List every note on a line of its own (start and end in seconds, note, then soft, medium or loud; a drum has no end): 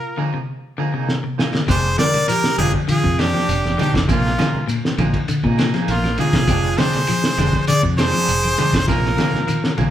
0.00 0.19 A#2 medium
0.00 0.19 F4 medium
0.00 0.20 A#4 medium
0.17 0.32 D3 medium
0.17 0.36 F3 medium
0.17 0.37 A#3 medium
0.17 0.37 D#4 medium
0.17 0.37 G#4 medium
0.34 0.60 C3 medium
0.78 0.92 D3 medium
0.78 0.94 F3 medium
0.78 0.94 A#3 medium
0.78 0.93 D#4 medium
0.78 0.93 G#4 medium
0.94 1.20 C3 medium
0.94 1.12 A#3 soft
0.94 1.12 D#4 soft
0.94 1.11 G#4 soft
1.09 snare medium
1.24 1.50 C3 medium
1.38 1.57 F3 medium
1.38 1.57 A#3 medium
1.38 1.57 D#4 medium
1.38 1.57 G#4 medium
1.38 snare medium
1.53 1.66 D3 medium
1.53 snare medium
1.68 1.96 F1 loud
1.68 1.95 C3 loud
1.68 1.87 G#3 medium
1.68 1.87 D4 medium
1.68 1.87 G4 medium
1.68 1.98 G#4 medium
1.68 1.97 C5 loud
1.68 muted clean electric guitar stroke medium
1.68 kick loud
1.68 ride bell medium
1.68 claves medium
1.68 shekere medium
1.98 2.25 D3 medium
1.98 2.17 G#3 medium
1.98 2.17 C4 medium
1.98 2.27 A#4 medium
1.98 2.27 D5 loud
1.98 muted clean electric guitar stroke medium
1.98 snare medium
1.98 ride bell medium
1.98 high conga loud
1.98 shekere soft
2.14 ride bell medium
2.14 low conga medium
2.28 2.55 F3 medium
2.28 2.58 G4 medium
2.28 2.56 A#4 loud
2.28 ride bell medium
2.28 claves medium
2.28 shekere medium
2.44 snare medium
2.58 2.73 F1 loud
2.58 2.85 D3 medium
2.58 2.77 G#3 medium
2.58 2.77 C4 medium
2.58 2.77 D4 medium
2.58 2.73 F4 medium
2.58 2.77 G4 medium
2.58 2.72 G#4 loud
2.58 ride bell medium
2.58 high conga loud
2.58 low conga medium
2.58 claves medium
2.58 shekere soft
2.74 kick medium
2.88 3.02 D3 medium
2.88 3.21 F4 medium
2.88 3.21 G#4 medium
2.88 muted fingered electric bass stroke soft
2.88 ride bell medium
2.88 high conga medium
2.88 shekere loud
3.04 3.32 F2 loud
3.04 3.30 C3 medium
3.04 kick medium
3.18 3.34 G#3 medium
3.18 3.34 C4 medium
3.18 3.79 D4 medium
3.18 3.34 D4 medium
3.18 3.79 G4 medium
3.18 3.33 G4 medium
3.18 snare medium
3.18 ride bell medium
3.18 claves medium
3.18 shekere soft
3.34 3.61 F3 medium
3.34 3.52 C4 soft
3.34 3.52 D4 soft
3.34 3.52 G4 soft
3.34 snare soft
3.49 3.76 F1 medium
3.49 ride bell medium
3.49 shekere loud
3.64 snare soft
3.64 high conga medium
3.64 claves medium
3.78 3.92 D3 medium
3.78 3.97 G#3 medium
3.78 3.97 C4 medium
3.78 3.98 D4 medium
3.78 3.93 D#4 medium
3.78 3.98 G4 medium
3.78 3.94 G4 medium
3.78 ride bell medium
3.78 high conga medium
3.78 low conga medium
3.78 shekere soft
3.94 4.07 F1 medium
3.94 4.07 C3 medium
3.94 kick medium
3.94 snare medium
3.94 ride bell medium
4.08 4.36 A#1 loud
4.08 4.35 C3 loud
4.08 4.27 F3 medium
4.08 4.27 A#3 medium
4.08 4.66 A#3 medium
4.08 4.27 D#4 medium
4.08 4.66 F4 medium
4.08 4.28 G#4 medium
4.08 kick loud
4.08 ride bell soft
4.08 claves medium
4.08 shekere medium
4.26 snare soft
4.38 4.65 D3 medium
4.38 4.57 A#3 medium
4.38 4.57 D#4 medium
4.38 4.57 G#4 medium
4.38 snare medium
4.38 ride bell soft
4.38 high conga loud
4.38 shekere soft
4.54 low conga medium
4.68 4.94 A#2 medium
4.68 ride bell medium
4.68 claves medium
4.68 shekere medium
4.85 snare medium
4.98 5.13 A#1 loud
4.98 5.25 D3 medium
4.98 5.17 F3 medium
4.98 5.17 A#3 medium
4.98 5.17 D#4 medium
4.98 5.18 G#4 medium
4.98 ride bell medium
4.98 high conga medium
4.98 low conga medium
4.98 claves medium
4.98 shekere soft
5.14 kick medium
5.14 ride bell medium
5.28 5.42 D3 medium
5.28 muted fingered electric bass stroke soft
5.28 ride bell medium
5.28 shekere medium
5.44 5.71 A#2 loud
5.44 5.70 C3 medium
5.44 5.58 A#3 soft
5.44 5.58 D#4 medium
5.44 5.58 G#4 medium
5.44 kick medium
5.58 5.74 F3 medium
5.58 5.74 A#3 medium
5.58 5.73 D#4 medium
5.58 5.73 G#4 medium
5.58 snare medium
5.58 ride bell medium
5.58 claves medium
5.58 shekere soft
5.74 6.00 F3 medium
5.74 5.92 A#3 soft
5.74 5.92 D#4 soft
5.74 5.91 G#4 soft
5.74 snare soft
5.74 ride bell medium
5.88 6.16 A#1 loud
5.88 6.17 A#3 medium
5.88 6.17 F4 medium
5.88 snare soft
5.88 ride bell medium
5.88 shekere loud
6.03 snare soft
6.03 high conga medium
6.03 claves medium
6.18 6.32 D3 medium
6.18 6.37 F3 medium
6.18 6.37 A#3 medium
6.18 6.37 D#4 medium
6.18 6.82 F4 medium
6.18 6.80 G#4 loud
6.18 6.38 G#4 medium
6.18 ride bell medium
6.18 high conga medium
6.18 low conga medium
6.18 shekere soft
6.33 6.47 A#1 medium
6.33 6.47 C3 medium
6.33 kick medium
6.33 snare medium
6.33 ride bell medium
6.47 6.75 F1 loud
6.47 6.74 C3 loud
6.47 6.67 G#3 medium
6.47 6.67 C4 medium
6.47 6.67 D4 medium
6.47 6.67 G4 medium
6.47 kick loud
6.47 ride bell medium
6.47 claves medium
6.47 shekere medium
6.77 7.05 D3 medium
6.77 6.96 G#3 medium
6.77 6.97 C4 medium
6.77 6.97 D4 medium
6.77 6.97 G4 medium
6.77 7.69 G#4 medium
6.77 7.68 C5 loud
6.77 snare medium
6.77 ride bell medium
6.77 high conga loud
6.77 shekere soft
6.93 snare soft
6.93 ride bell medium
6.93 low conga medium
7.07 7.35 F3 medium
7.07 ride bell medium
7.07 claves medium
7.07 shekere medium
7.24 snare medium
7.37 7.52 F1 loud
7.37 7.65 D3 medium
7.37 7.57 G#3 medium
7.37 7.57 C4 medium
7.37 7.57 D4 medium
7.37 snare soft
7.37 ride bell medium
7.37 high conga loud
7.37 low conga medium
7.37 claves medium
7.37 shekere soft
7.53 kick medium
7.67 7.82 D3 loud
7.67 7.82 G#4 medium
7.67 7.82 D5 loud
7.67 muted fingered electric bass stroke soft
7.67 ride bell medium
7.67 high conga medium
7.67 shekere loud
7.83 8.11 F2 loud
7.83 8.10 C3 medium
7.83 kick medium
7.98 8.13 G#3 medium
7.98 8.13 C4 medium
7.98 8.13 D4 medium
7.98 8.12 G4 medium
7.98 8.85 G#4 loud
7.98 8.84 C5 loud
7.98 snare medium
7.98 ride bell medium
7.98 claves medium
7.98 shekere soft
8.13 8.40 F3 medium
8.13 8.32 C4 soft
8.13 8.31 D4 soft
8.13 8.31 G4 soft
8.28 8.56 F1 loud
8.28 ride bell medium
8.28 shekere loud
8.44 high conga medium
8.44 claves medium
8.58 8.72 D3 medium
8.58 8.76 G#3 medium
8.58 8.77 C4 medium
8.58 8.77 D4 medium
8.58 8.77 G4 medium
8.58 ride bell medium
8.58 high conga medium
8.58 low conga medium
8.58 shekere soft
8.73 8.86 F1 medium
8.73 8.86 C3 medium
8.73 kick medium
8.73 snare medium
8.73 ride bell medium
8.88 9.15 A#1 loud
8.88 9.14 C3 loud
8.88 9.06 F3 medium
8.88 9.07 A#3 medium
8.88 9.07 D#4 medium
8.88 9.75 F4 medium
8.88 9.07 G#4 medium
8.88 9.74 A#4 medium
8.88 kick loud
8.88 snare soft
8.88 ride bell medium
8.88 claves medium
8.88 shekere loud
9.05 snare soft
9.17 9.44 D3 medium
9.17 9.36 F3 medium
9.17 9.37 A#3 medium
9.17 9.37 D#4 medium
9.17 9.37 G#4 medium
9.17 snare medium
9.17 ride bell medium
9.17 high conga medium
9.17 shekere soft
9.34 snare soft
9.34 high conga medium
9.34 low conga medium
9.48 9.74 D#3 medium
9.48 ride bell medium
9.48 claves medium
9.48 shekere loud
9.64 snare medium
9.78 9.90 A#1 loud
9.78 9.90 D3 medium
9.78 9.90 F3 medium
9.78 9.90 A#3 medium
9.78 9.90 G#4 medium
9.78 muted clean electric guitar stroke medium
9.78 ride bell medium
9.78 high conga loud
9.78 low conga loud
9.78 claves medium
9.78 shekere soft